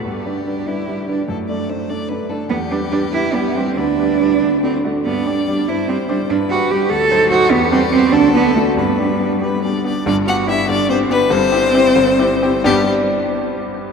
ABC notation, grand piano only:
X:1
M:6/8
L:1/8
Q:3/8=96
K:G
V:1 name="Grand piano"
G,, [G,DB] [G,DB] [G,DB] [G,DB] [G,DB] | F,, [A,Dd] [A,Dd] [A,Dd] [A,Dd] [A,Dd] | E,, [G,GB] [G,GB] [G,GB] [G,GB] [G,GB] | D,, [G,GB] [G,GB] D,, [A,Fd] [A,Fd] |
G,, [G,Gd] [G,Gd] G,, [G,Gc] [G,Gc] | G,, [G,GB] [G,GB] D,, [F,_Ec] [F,Ec] | E,, [G,GB] [G,GB] D,, [A,DF] [A,DF] | G,, [B,DG] [B,DG] [B,DG] [B,DG] [B,DG] |
[G,,,G,,] [B,DG] [B,DG] [G,,,G,,] [B,DG] [B,DG] | [G,,,G,,] [CEG] [CEG] [G,,,G,,] [CEG] [CEG] | [G,,G,B,DGd] z4 z |]